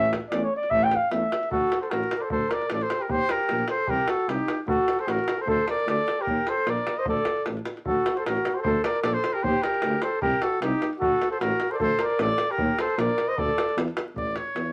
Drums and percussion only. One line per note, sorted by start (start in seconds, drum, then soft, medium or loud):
0.05 davul high soft
0.13 davul high medium
0.32 davul high medium
0.63 davul high soft
0.71 davul low medium
0.83 davul high soft
0.91 davul high medium
1.11 davul high medium
1.32 davul high medium
1.43 davul high soft
1.52 davul low medium
1.72 davul high medium
1.83 davul high soft
1.91 davul high medium
2.03 davul high soft
2.11 davul high medium
2.30 davul low medium
2.51 davul high medium
2.62 davul high soft
2.70 davul high medium
2.81 davul high soft
2.90 davul high medium
3.10 davul low medium
3.29 davul high medium
3.39 davul high soft
3.49 davul high medium
3.58 davul high soft
3.68 davul high medium
3.87 davul low medium
3.99 davul high soft
4.08 davul high medium
4.20 davul high soft
4.29 davul high medium
4.48 davul high medium
4.68 davul low loud
4.88 davul high medium
4.99 davul high soft
5.08 davul high medium
5.19 davul high soft
5.28 davul high medium
5.48 davul low loud
5.68 davul high medium
5.79 davul high soft
5.88 davul high medium
5.99 davul high soft
6.08 davul high medium
6.27 davul low medium
6.47 davul high medium
6.58 davul high soft
6.67 davul high medium
6.77 davul high soft
6.87 davul high medium
7.06 davul low loud
7.17 davul high soft
7.25 davul high medium
7.36 davul high soft
7.46 davul high medium
7.57 davul high soft
7.65 davul high medium
7.77 davul high soft
7.86 davul low medium
8.06 davul high medium
8.17 davul high soft
8.26 davul high medium
8.37 davul high soft
8.45 davul high medium
8.65 davul low loud
8.84 davul high medium
8.95 davul high soft
9.04 davul high medium
9.15 davul high soft
9.24 davul high medium
9.44 davul low medium
9.63 davul high medium
9.74 davul high soft
9.82 davul high medium
9.93 davul high soft
10.02 davul high medium
10.22 davul low loud
10.33 davul high soft
10.42 davul high medium
10.53 davul high soft
10.62 davul high medium
10.82 davul high medium
10.93 davul high soft
11.02 davul low medium
11.21 davul high medium
11.33 davul high soft
11.41 davul high medium
11.52 davul high soft
11.60 davul high medium
11.80 davul low medium
11.99 davul high medium
12.10 davul high soft
12.19 davul high medium
12.30 davul high soft
12.38 davul high medium
12.58 davul low loud
12.79 davul high medium
12.90 davul high soft
12.99 davul high medium
13.09 davul high soft
13.18 davul high medium
13.38 davul low loud
13.49 davul high soft
13.58 davul high medium
13.70 davul high soft
13.78 davul high medium
13.88 davul high soft
13.97 davul high medium
14.16 davul low medium
14.27 davul high soft
14.36 davul high medium
14.47 davul high soft
14.56 davul high medium